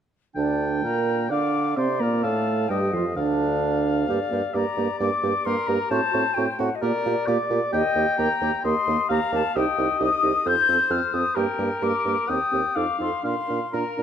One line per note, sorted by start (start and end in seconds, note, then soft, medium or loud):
0.36 0.81 D2 medium
0.36 0.86 D3 medium
0.36 0.86 D4 medium
0.36 0.81 D5 medium
0.36 1.33 G5 medium
0.84 1.32 A#2 medium
0.84 1.31 A#3 medium
0.84 1.30 A#4 medium
0.84 1.31 A#5 medium
1.30 1.77 D3 medium
1.30 1.77 D4 medium
1.30 1.76 D5 medium
1.30 1.79 F5 medium
1.30 1.77 D6 medium
1.77 2.00 C3 medium
1.77 1.88 C4 medium
1.77 2.04 C5 medium
1.77 2.23 D5 medium
1.77 2.02 C6 medium
2.00 2.23 A#2 medium
2.00 2.26 A#3 medium
2.00 2.25 A#4 medium
2.00 2.25 A#5 medium
2.23 2.69 A2 medium
2.23 2.69 A3 medium
2.23 2.70 A4 medium
2.23 2.69 F5 medium
2.23 2.70 A5 medium
2.69 2.92 G2 medium
2.69 2.93 G3 medium
2.69 2.81 G4 medium
2.69 3.16 D#5 medium
2.69 2.95 G5 medium
2.93 3.16 F2 medium
2.93 3.04 F3 medium
2.93 3.05 F4 medium
2.93 3.17 F5 medium
3.16 4.07 D2 medium
3.16 4.07 D3 medium
3.16 4.08 D4 medium
3.16 4.07 D5 medium
3.16 4.56 F5 medium
4.08 4.19 G2 medium
4.08 4.19 A#3 medium
4.08 4.19 G4 medium
4.08 4.54 D5 medium
4.31 4.42 G2 medium
4.31 4.41 A#3 soft
4.31 4.42 G4 medium
4.54 4.65 G2 medium
4.54 4.65 A#3 medium
4.54 4.66 G4 medium
4.54 5.46 D5 medium
4.54 5.00 A#5 medium
4.77 4.87 G2 medium
4.77 4.89 A#3 medium
4.77 4.88 G4 medium
5.00 5.10 G2 medium
5.00 5.11 A#3 medium
5.00 5.10 G4 medium
5.00 5.47 D6 medium
5.23 5.33 G2 medium
5.23 5.34 A#3 medium
5.23 5.33 G4 medium
5.45 5.56 G2 medium
5.45 5.57 A#3 medium
5.45 5.56 G4 medium
5.45 5.90 A#4 medium
5.45 5.69 C6 loud
5.67 5.78 G2 medium
5.67 5.79 A#3 medium
5.67 5.79 G4 medium
5.67 5.91 A#5 medium
5.90 6.01 A2 medium
5.90 6.01 C4 medium
5.90 6.02 F#4 medium
5.90 6.53 C5 medium
5.90 6.36 A5 loud
6.12 6.24 A2 medium
6.12 6.25 C4 medium
6.12 6.23 F#4 medium
6.34 6.47 A2 medium
6.34 6.48 C4 medium
6.34 6.46 F#4 medium
6.34 6.61 G5 medium
6.59 6.70 A2 medium
6.59 6.69 C4 medium
6.59 6.69 F#4 medium
6.59 6.77 F#5 medium
6.75 6.83 D#5 medium
6.82 6.92 A#2 medium
6.82 6.93 A#3 medium
6.82 6.92 G4 medium
6.82 7.28 A#4 medium
6.82 7.45 D5 medium
7.05 7.15 A#2 medium
7.05 7.16 A#3 medium
7.05 7.16 G4 medium
7.27 7.38 A#2 medium
7.27 7.38 A#3 medium
7.27 7.38 G4 medium
7.27 7.72 D5 medium
7.50 7.60 A#2 medium
7.50 7.60 A#3 medium
7.50 7.61 G4 medium
7.72 7.83 D#2 medium
7.72 7.83 A#3 medium
7.72 7.82 G4 medium
7.72 8.19 D#5 loud
7.72 8.62 G5 medium
7.95 8.05 D#2 medium
7.95 8.06 A#3 medium
7.95 8.06 G4 medium
8.18 8.28 D#2 medium
8.18 8.29 A#3 medium
8.18 8.29 G4 medium
8.18 8.64 A#5 loud
8.41 8.51 D#2 medium
8.41 8.52 A#3 medium
8.41 8.52 G4 medium
8.64 8.74 D#2 medium
8.64 8.75 A#3 medium
8.64 8.75 G4 medium
8.64 9.08 D#5 medium
8.64 9.09 C6 loud
8.87 8.97 D#2 medium
8.87 8.98 A#3 medium
8.87 8.97 G4 medium
9.09 9.20 D#2 medium
9.09 9.20 A#3 medium
9.09 9.20 G4 medium
9.09 9.58 F5 medium
9.09 9.32 A#5 loud
9.32 9.42 D#2 medium
9.32 9.44 A#3 medium
9.32 9.42 G4 medium
9.32 9.55 A5 loud
9.55 9.65 C2 medium
9.55 9.67 D#4 medium
9.55 9.65 G4 medium
9.55 10.45 D#5 medium
9.55 10.00 G5 loud
9.78 9.88 C2 medium
9.78 9.89 D#4 medium
9.78 9.88 G4 medium
9.99 10.10 C2 medium
9.99 10.11 D#4 medium
9.99 10.10 G4 medium
9.99 10.49 D#6 loud
10.22 10.33 C2 medium
10.22 10.33 D#4 medium
10.22 10.33 G4 medium
10.45 10.56 F2 medium
10.45 10.56 C4 medium
10.45 10.55 A4 medium
10.45 11.37 C5 medium
10.45 10.93 G6 loud
10.68 10.78 F2 medium
10.68 10.79 C4 medium
10.68 10.79 A4 medium
10.90 11.00 F2 medium
10.90 11.01 C4 medium
10.90 11.00 A4 medium
10.90 11.15 F6 medium
11.13 11.24 F2 medium
11.13 11.24 C4 medium
11.13 11.23 A4 medium
11.13 11.38 D#6 loud
11.35 11.47 G2 medium
11.35 11.47 A#3 medium
11.35 11.46 G4 medium
11.35 12.30 A#4 medium
11.35 11.84 G5 medium
11.59 11.69 G2 medium
11.59 11.70 A#3 soft
11.59 11.69 G4 medium
11.82 11.92 G2 medium
11.82 11.93 A#3 medium
11.82 11.92 G4 medium
11.82 12.30 D6 medium
12.05 12.15 G2 medium
12.05 12.17 A#3 medium
12.05 12.16 G4 medium
12.28 12.39 D#2 medium
12.28 12.40 C4 medium
12.28 12.39 G4 medium
12.28 12.77 G5 medium
12.28 12.78 D#6 medium
12.51 12.63 D#2 medium
12.51 12.62 C4 soft
12.51 12.63 G4 medium
12.75 12.87 F2 medium
12.75 12.87 D#4 medium
12.75 12.87 A4 medium
12.75 13.24 F5 medium
12.75 13.00 D6 medium
12.99 13.11 F2 medium
12.99 13.10 D#4 soft
12.99 13.11 A4 soft
12.99 13.24 C6 medium
13.23 13.35 A#2 medium
13.23 13.34 D4 medium
13.23 13.35 A#4 medium
13.23 13.67 F5 medium
13.23 13.75 C6 medium
13.48 13.60 A#2 medium
13.48 13.59 D4 soft
13.48 13.59 A#4 soft
13.72 13.84 A#2 medium
13.72 13.84 D4 soft
13.72 14.03 A#4 medium
13.72 13.84 A#4 soft
13.72 14.03 A#5 medium
13.97 14.03 A#2 soft
13.97 14.03 D4 soft
13.97 14.03 A#4 soft